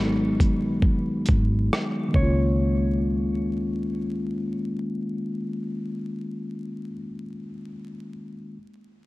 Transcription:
Already playing: fingered electric bass G#1, tine electric piano D#3 F#3 G#3 B3 D#4 F#4, clean electric guitar B4
0.40 kick, closed hi-hat
0.69 fingered electric bass A#1
0.82 kick
1.26 fingered electric bass G#1, kick, closed hi-hat
1.73 cross-stick
2.09 tine electric piano D#3 G#3
2.14 fingered electric bass C#2, tine electric piano A#3, clean electric guitar C#5, kick
2.19 tine electric piano C#4 F4

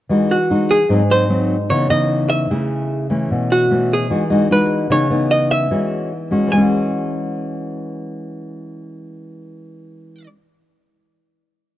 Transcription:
0.09 nylon-string guitar E3 G#3 D#4 F#4
0.31 hollow-body jazz guitar F#4
0.50 nylon-string guitar G#3 D#4 F#4
0.71 hollow-body jazz guitar G#4
0.89 nylon-string guitar G#2 F#3 C4 D#4
1.10 nylon-string guitar F#3 C4 D#4, hollow-body jazz guitar C5
1.29 nylon-string guitar F#3 C4 D#4
1.70 nylon-string guitar C#3 E3 B3 D#4, hollow-body jazz guitar C#5
1.90 nylon-string guitar E3 B3 D#4, hollow-body jazz guitar D#5
2.30 hollow-body jazz guitar E5
2.50 nylon-string guitar C#3 A3 E4 G#4
3.10 nylon-string guitar E3 A3 C#4
3.31 nylon-string guitar B2
3.52 hollow-body jazz guitar F#4
3.71 nylon-string guitar E3 A3 C#4
3.93 hollow-body jazz guitar G#4
4.10 nylon-string guitar E3 G#3 D#4 F#4
4.30 nylon-string guitar G#3 D#4 F#4
4.50 nylon-string guitar G#3 D#4 F#4, hollow-body jazz guitar B4
4.90 nylon-string guitar C#3 E3 B3 D#4, hollow-body jazz guitar C#5
5.10 nylon-string guitar E3 B3 D#4
5.31 hollow-body jazz guitar D#5
5.51 hollow-body jazz guitar E5
5.71 nylon-string guitar E3 G#3 C#4 F#4
6.31 nylon-string guitar G#3 C#4 F#4
6.47 nylon-string guitar E3
6.52 nylon-string guitar G#3, hollow-body jazz guitar G#5
6.57 nylon-string guitar C#4
6.62 nylon-string guitar F#4

